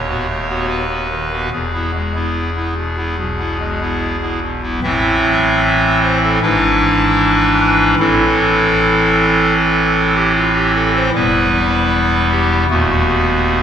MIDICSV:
0, 0, Header, 1, 2, 480
1, 0, Start_track
1, 0, Key_signature, 0, "minor"
1, 0, Tempo, 826446
1, 885, Time_signature, 4, 2, 24, 8
1, 2335, Tempo, 807537
1, 3295, Tempo, 783290
1, 8192, End_track
2, 0, Start_track
2, 0, Title_t, "Pipe organ"
2, 0, Program_c, 0, 19
2, 0, Note_on_c, 0, 27, 76
2, 0, Note_on_c, 0, 39, 75
2, 0, Note_on_c, 0, 73, 105
2, 51, Note_on_c, 0, 59, 53
2, 51, Note_on_c, 0, 66, 59
2, 150, Note_off_c, 0, 66, 0
2, 151, Note_off_c, 0, 59, 0
2, 165, Note_on_c, 0, 57, 58
2, 271, Note_off_c, 0, 57, 0
2, 286, Note_on_c, 0, 59, 54
2, 286, Note_on_c, 0, 66, 60
2, 386, Note_off_c, 0, 73, 0
2, 401, Note_on_c, 0, 71, 96
2, 486, Note_off_c, 0, 66, 0
2, 487, Note_off_c, 0, 59, 0
2, 522, Note_on_c, 0, 59, 41
2, 523, Note_on_c, 0, 66, 50
2, 624, Note_off_c, 0, 59, 0
2, 624, Note_off_c, 0, 66, 0
2, 642, Note_on_c, 0, 51, 48
2, 749, Note_off_c, 0, 51, 0
2, 765, Note_on_c, 0, 59, 45
2, 765, Note_on_c, 0, 66, 58
2, 857, Note_off_c, 0, 27, 0
2, 857, Note_off_c, 0, 39, 0
2, 868, Note_off_c, 0, 59, 0
2, 868, Note_off_c, 0, 66, 0
2, 869, Note_off_c, 0, 71, 0
2, 886, Note_on_c, 0, 40, 65
2, 886, Note_on_c, 0, 68, 88
2, 888, Note_on_c, 0, 28, 67
2, 1007, Note_on_c, 0, 59, 51
2, 1009, Note_on_c, 0, 64, 44
2, 1110, Note_off_c, 0, 59, 0
2, 1111, Note_off_c, 0, 64, 0
2, 1127, Note_on_c, 0, 56, 57
2, 1235, Note_off_c, 0, 56, 0
2, 1248, Note_on_c, 0, 64, 52
2, 1249, Note_on_c, 0, 59, 46
2, 1453, Note_off_c, 0, 59, 0
2, 1453, Note_off_c, 0, 64, 0
2, 1490, Note_on_c, 0, 59, 42
2, 1490, Note_on_c, 0, 64, 45
2, 1592, Note_off_c, 0, 59, 0
2, 1592, Note_off_c, 0, 64, 0
2, 1608, Note_on_c, 0, 47, 48
2, 1717, Note_off_c, 0, 47, 0
2, 1729, Note_on_c, 0, 59, 46
2, 1729, Note_on_c, 0, 64, 49
2, 1833, Note_off_c, 0, 59, 0
2, 1833, Note_off_c, 0, 64, 0
2, 1849, Note_on_c, 0, 35, 57
2, 1850, Note_on_c, 0, 47, 51
2, 1970, Note_on_c, 0, 59, 48
2, 1973, Note_on_c, 0, 64, 46
2, 2074, Note_off_c, 0, 59, 0
2, 2075, Note_off_c, 0, 64, 0
2, 2091, Note_on_c, 0, 56, 53
2, 2199, Note_off_c, 0, 56, 0
2, 2213, Note_on_c, 0, 64, 58
2, 2214, Note_on_c, 0, 59, 49
2, 2419, Note_off_c, 0, 59, 0
2, 2419, Note_off_c, 0, 64, 0
2, 2454, Note_on_c, 0, 59, 41
2, 2454, Note_on_c, 0, 64, 43
2, 2556, Note_off_c, 0, 68, 0
2, 2559, Note_off_c, 0, 59, 0
2, 2559, Note_off_c, 0, 64, 0
2, 2563, Note_off_c, 0, 47, 0
2, 2575, Note_on_c, 0, 47, 47
2, 2685, Note_off_c, 0, 47, 0
2, 2696, Note_on_c, 0, 59, 48
2, 2696, Note_on_c, 0, 64, 42
2, 2794, Note_off_c, 0, 35, 0
2, 2796, Note_off_c, 0, 40, 0
2, 2797, Note_off_c, 0, 28, 0
2, 2799, Note_off_c, 0, 59, 0
2, 2799, Note_off_c, 0, 64, 0
2, 2816, Note_on_c, 0, 60, 53
2, 2817, Note_on_c, 0, 33, 65
2, 2817, Note_on_c, 0, 45, 74
2, 2817, Note_on_c, 0, 64, 57
2, 2817, Note_on_c, 0, 76, 108
2, 2819, Note_on_c, 0, 52, 55
2, 3516, Note_off_c, 0, 76, 0
2, 3534, Note_on_c, 0, 72, 103
2, 3639, Note_off_c, 0, 72, 0
2, 3659, Note_on_c, 0, 69, 91
2, 3756, Note_off_c, 0, 33, 0
2, 3756, Note_off_c, 0, 45, 0
2, 3756, Note_off_c, 0, 60, 0
2, 3756, Note_off_c, 0, 64, 0
2, 3757, Note_off_c, 0, 52, 0
2, 3763, Note_off_c, 0, 69, 0
2, 3776, Note_on_c, 0, 32, 61
2, 3776, Note_on_c, 0, 44, 59
2, 3776, Note_on_c, 0, 52, 49
2, 3776, Note_on_c, 0, 62, 50
2, 3776, Note_on_c, 0, 64, 58
2, 3776, Note_on_c, 0, 71, 103
2, 4714, Note_off_c, 0, 32, 0
2, 4714, Note_off_c, 0, 44, 0
2, 4714, Note_off_c, 0, 52, 0
2, 4714, Note_off_c, 0, 62, 0
2, 4714, Note_off_c, 0, 64, 0
2, 4714, Note_off_c, 0, 71, 0
2, 4738, Note_on_c, 0, 52, 56
2, 4738, Note_on_c, 0, 60, 55
2, 4738, Note_on_c, 0, 64, 61
2, 4739, Note_on_c, 0, 45, 70
2, 4739, Note_on_c, 0, 69, 111
2, 4740, Note_on_c, 0, 33, 68
2, 5682, Note_off_c, 0, 69, 0
2, 5702, Note_on_c, 0, 69, 94
2, 6055, Note_off_c, 0, 69, 0
2, 6064, Note_on_c, 0, 67, 99
2, 6168, Note_off_c, 0, 67, 0
2, 6185, Note_on_c, 0, 65, 93
2, 6289, Note_off_c, 0, 65, 0
2, 6308, Note_on_c, 0, 67, 85
2, 6411, Note_off_c, 0, 67, 0
2, 6429, Note_on_c, 0, 69, 105
2, 6531, Note_off_c, 0, 69, 0
2, 6555, Note_on_c, 0, 72, 102
2, 6643, Note_off_c, 0, 45, 0
2, 6643, Note_off_c, 0, 52, 0
2, 6643, Note_off_c, 0, 60, 0
2, 6643, Note_off_c, 0, 64, 0
2, 6644, Note_off_c, 0, 33, 0
2, 6654, Note_off_c, 0, 72, 0
2, 6673, Note_on_c, 0, 40, 72
2, 6674, Note_on_c, 0, 59, 61
2, 6674, Note_on_c, 0, 64, 57
2, 6675, Note_on_c, 0, 28, 73
2, 6675, Note_on_c, 0, 71, 101
2, 6676, Note_on_c, 0, 55, 56
2, 7366, Note_off_c, 0, 71, 0
2, 7385, Note_on_c, 0, 67, 99
2, 7587, Note_off_c, 0, 67, 0
2, 7599, Note_off_c, 0, 40, 0
2, 7600, Note_off_c, 0, 59, 0
2, 7600, Note_off_c, 0, 64, 0
2, 7601, Note_off_c, 0, 28, 0
2, 7601, Note_off_c, 0, 55, 0
2, 7623, Note_on_c, 0, 59, 55
2, 7624, Note_on_c, 0, 57, 56
2, 7625, Note_on_c, 0, 27, 61
2, 7625, Note_on_c, 0, 39, 74
2, 7626, Note_on_c, 0, 66, 94
2, 8192, Note_off_c, 0, 27, 0
2, 8192, Note_off_c, 0, 39, 0
2, 8192, Note_off_c, 0, 57, 0
2, 8192, Note_off_c, 0, 59, 0
2, 8192, Note_off_c, 0, 66, 0
2, 8192, End_track
0, 0, End_of_file